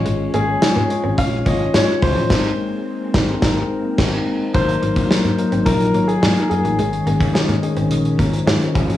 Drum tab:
CC |----------------|x-----------x---|----------------|----------------|
HH |x-x-x-x-x-x-x-o-|----------------|xxxx-xxxxxxx-xxx|xxxx-xxxxxxx-xxx|
TB |----x-------x---|----------------|----------------|----------------|
SD |----o-------o---|o-----o-o---o---|----o-------o---|----o-------o---|
BD |--------o-o---o-|o-----o-o---o---|o--o----o-------|---o------o---o-|